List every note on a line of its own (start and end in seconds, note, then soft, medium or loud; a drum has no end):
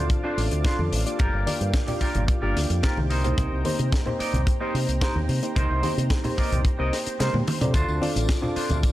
0.00 0.21 C4 medium
0.00 0.21 D4 medium
0.00 0.21 F4 medium
0.00 0.21 A4 medium
0.00 1.16 C5 medium
0.00 0.21 D5 medium
0.00 1.17 F5 medium
0.00 1.16 A5 medium
0.00 3.06 D6 medium
0.10 kick loud
0.10 closed hi-hat medium
0.24 0.62 C4 medium
0.24 0.38 D4 loud
0.24 0.62 D4 medium
0.24 0.62 F4 medium
0.24 0.38 F4 medium
0.24 0.62 A4 medium
0.24 0.38 C5 loud
0.24 0.62 D5 medium
0.37 0.48 A1 medium
0.37 open hi-hat medium
0.51 0.62 D2 medium
0.51 muted clean electric guitar stroke soft
0.51 closed hi-hat medium
0.64 1.03 C4 medium
0.64 0.79 D4 medium
0.64 1.03 D4 medium
0.64 0.79 F4 medium
0.64 1.03 F4 medium
0.64 1.03 A4 medium
0.64 0.79 C5 medium
0.64 1.03 D5 medium
0.64 kick loud
0.64 snare loud
0.64 closed hi-hat medium
0.79 0.89 F2 medium
0.79 high conga medium
0.92 1.03 A1 medium
0.92 muted clean electric guitar stroke soft
0.92 open hi-hat loud
1.05 1.43 A#3 medium
1.05 1.44 D4 medium
1.05 1.44 F4 medium
1.05 1.44 G4 medium
1.05 1.44 D5 medium
1.05 closed hi-hat medium
1.19 1.30 G1 medium
1.19 3.08 A#3 medium
1.19 1.54 F4 loud
1.19 1.54 G4 medium
1.19 1.54 A#4 loud
1.19 3.08 F5 medium
1.19 7.70 G5 medium
1.19 kick loud
1.19 closed hi-hat medium
1.33 1.44 G1 loud
1.46 1.84 A#3 medium
1.46 1.84 D4 medium
1.46 1.85 F4 medium
1.46 1.85 G4 medium
1.46 1.85 D5 loud
1.46 open hi-hat loud
1.46 high conga medium
1.61 1.71 G2 medium
1.61 closed hi-hat medium
1.74 kick loud
1.74 snare loud
1.74 closed hi-hat medium
1.87 2.39 A#3 medium
1.87 2.39 D4 medium
1.87 2.39 F4 medium
1.87 2.39 G4 medium
1.87 2.40 D5 loud
1.87 muted clean electric guitar stroke medium
1.87 open hi-hat medium
1.87 low conga medium
2.01 2.22 F4 medium
2.01 2.22 G4 medium
2.01 2.22 A#4 medium
2.01 muted fingered electric bass stroke soft
2.01 kick medium
2.01 open hi-hat loud
2.15 2.26 G1 loud
2.15 closed hi-hat medium
2.15 high conga medium
2.15 low conga medium
2.28 kick loud
2.28 closed hi-hat medium
2.42 2.53 G1 medium
2.42 2.80 A#3 medium
2.42 2.80 D4 medium
2.42 2.56 F4 loud
2.42 2.80 F4 medium
2.42 2.56 G4 medium
2.42 2.80 G4 medium
2.42 2.56 A#4 loud
2.42 2.80 D5 medium
2.56 2.67 D2 medium
2.56 snare medium
2.56 open hi-hat loud
2.69 2.80 F2 medium
2.69 muted clean electric guitar stroke soft
2.69 closed hi-hat medium
2.83 3.21 A#3 medium
2.83 3.21 C4 medium
2.83 3.21 D#4 medium
2.83 2.97 F4 medium
2.83 2.97 G4 medium
2.83 3.21 G4 medium
2.83 2.98 A#4 medium
2.83 3.21 C5 medium
2.83 kick loud
2.83 snare loud
2.83 closed hi-hat medium
2.97 3.33 C2 medium
2.97 high conga medium
3.10 3.87 D#4 medium
3.10 3.87 A#4 medium
3.10 8.92 C5 medium
3.10 3.87 C5 loud
3.10 7.70 A#5 medium
3.10 open hi-hat medium
3.24 3.62 A#3 medium
3.24 3.62 C4 medium
3.24 3.62 D#4 medium
3.24 3.62 G4 medium
3.24 3.62 C5 medium
3.24 closed hi-hat medium
3.24 low conga medium
3.38 3.49 C2 medium
3.38 kick loud
3.38 closed hi-hat medium
3.52 3.62 C2 medium
3.65 4.03 A#3 medium
3.65 4.03 C4 medium
3.65 4.03 D#4 medium
3.65 4.03 G4 medium
3.65 4.03 C5 loud
3.65 open hi-hat loud
3.65 high conga medium
3.79 3.90 C3 medium
3.79 closed hi-hat medium
3.92 kick loud
3.92 snare loud
3.92 closed hi-hat medium
4.06 4.57 A#3 medium
4.06 4.57 C4 medium
4.06 4.57 D#4 medium
4.06 4.58 G4 medium
4.06 4.58 C5 medium
4.06 muted clean electric guitar stroke medium
4.06 low conga medium
4.19 4.40 D#4 medium
4.19 4.40 A#4 medium
4.19 4.41 D5 medium
4.19 muted fingered electric bass stroke soft
4.19 open hi-hat medium
4.33 4.44 C2 loud
4.33 closed hi-hat medium
4.33 high conga medium
4.33 low conga medium
4.47 kick loud
4.47 closed hi-hat medium
4.60 4.98 A#3 medium
4.60 4.98 C4 medium
4.60 4.74 D#4 loud
4.60 4.98 D#4 medium
4.60 4.98 G4 medium
4.60 4.74 A#4 medium
4.60 4.99 C5 medium
4.60 4.75 C5 medium
4.74 4.85 C3 medium
4.74 open hi-hat medium
4.88 4.99 C2 medium
4.88 muted clean electric guitar stroke soft
4.88 closed hi-hat medium
5.01 5.39 A#3 medium
5.01 5.39 C4 medium
5.01 5.15 D#4 medium
5.01 5.39 D#4 medium
5.01 5.40 G4 medium
5.01 5.15 A#4 medium
5.01 5.40 C5 medium
5.01 5.16 C5 medium
5.01 kick loud
5.01 snare loud
5.01 closed hi-hat medium
5.15 5.26 D#2 medium
5.15 high conga medium
5.29 5.40 C3 loud
5.29 muted clean electric guitar stroke soft
5.29 open hi-hat loud
5.42 5.80 A#3 medium
5.42 5.80 C4 medium
5.42 5.80 D#4 medium
5.42 5.80 G4 medium
5.42 5.81 C5 medium
5.42 closed hi-hat medium
5.55 5.67 C2 medium
5.55 5.90 D#4 loud
5.55 5.90 A#4 medium
5.55 5.91 C5 loud
5.55 kick loud
5.55 closed hi-hat medium
5.70 5.81 C2 medium
5.82 6.21 A#3 medium
5.82 6.21 C4 medium
5.82 6.21 D#4 medium
5.82 6.21 G4 medium
5.82 6.21 C5 loud
5.82 open hi-hat loud
5.82 high conga medium
5.97 6.08 C3 medium
5.97 closed hi-hat medium
6.10 kick loud
6.10 snare loud
6.10 closed hi-hat medium
6.24 6.76 A#3 medium
6.24 6.76 C4 medium
6.24 6.76 D#4 medium
6.24 6.76 G4 medium
6.24 6.76 C5 loud
6.24 muted clean electric guitar stroke medium
6.24 open hi-hat medium
6.24 low conga medium
6.37 6.58 D#4 medium
6.37 6.59 A#4 medium
6.37 6.59 D5 medium
6.37 muted fingered electric bass stroke soft
6.37 kick medium
6.37 open hi-hat medium
6.52 6.62 C2 loud
6.52 closed hi-hat medium
6.52 high conga medium
6.52 low conga medium
6.65 kick loud
6.65 closed hi-hat medium
6.78 6.90 C2 medium
6.78 7.16 A#3 medium
6.78 7.16 C4 medium
6.78 6.92 D#4 loud
6.78 7.17 D#4 medium
6.78 7.17 G4 medium
6.78 6.93 A#4 medium
6.78 7.17 C5 medium
6.78 6.93 D#5 loud
6.93 snare medium
6.93 open hi-hat loud
7.06 muted clean electric guitar stroke soft
7.06 muted fingered electric bass stroke soft
7.06 closed hi-hat medium
7.19 7.31 C3 medium
7.19 7.57 A#3 medium
7.19 7.58 C4 medium
7.19 7.33 D#4 medium
7.19 7.58 D#4 medium
7.19 7.58 G4 medium
7.19 7.34 A#4 medium
7.19 7.58 C5 medium
7.19 7.34 C5 loud
7.19 snare loud
7.19 closed hi-hat medium
7.19 high tom medium
7.34 7.44 A#2 medium
7.34 high tom medium
7.34 high conga medium
7.47 muted clean electric guitar stroke soft
7.47 muted fingered electric bass stroke soft
7.47 open hi-hat loud
7.47 mid tom medium
7.61 7.71 C3 medium
7.61 7.98 C4 medium
7.61 7.98 D4 medium
7.61 7.99 F4 medium
7.61 7.99 A4 medium
7.61 7.99 D5 medium
7.61 closed hi-hat medium
7.61 mid tom medium
7.61 low conga medium
7.74 7.85 D2 medium
7.74 8.08 D4 loud
7.74 8.09 F4 medium
7.74 8.09 C5 loud
7.74 8.92 F5 medium
7.74 8.92 A5 medium
7.74 8.92 D6 medium
7.74 kick loud
7.74 closed hi-hat medium
7.74 tambourine medium
7.88 7.99 D2 medium
7.88 tambourine soft
8.01 8.39 C4 medium
8.01 8.39 D4 medium
8.01 8.39 F4 medium
8.01 8.40 A4 medium
8.01 8.40 D5 loud
8.01 open hi-hat loud
8.01 high conga medium
8.16 8.26 A1 medium
8.16 closed hi-hat medium
8.16 tambourine medium
8.29 kick loud
8.29 snare loud
8.29 closed hi-hat medium
8.29 tambourine medium
8.42 8.92 C4 medium
8.42 8.92 D4 medium
8.42 8.92 F4 medium
8.42 8.92 A4 medium
8.42 8.92 D5 medium
8.42 muted clean electric guitar stroke medium
8.42 tambourine soft
8.42 low conga medium
8.56 8.77 D4 medium
8.56 8.77 F4 medium
8.56 8.77 C5 medium
8.56 muted fingered electric bass stroke soft
8.56 open hi-hat medium
8.70 8.81 D2 loud
8.70 closed hi-hat medium
8.70 tambourine medium
8.70 high conga medium
8.70 low conga medium
8.83 kick loud
8.83 closed hi-hat medium
8.83 tambourine medium